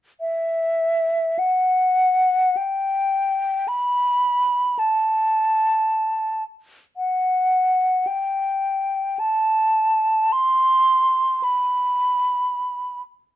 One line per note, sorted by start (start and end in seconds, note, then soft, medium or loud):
0.21 1.40 E5 medium
1.39 2.58 F#5 medium
2.57 3.70 G5 medium
3.68 4.80 B5 medium
4.79 6.44 A5 soft
6.97 8.09 F#5 medium
8.07 9.21 G5 soft
9.19 10.34 A5 medium
10.32 11.45 C6 medium
11.43 13.02 B5 medium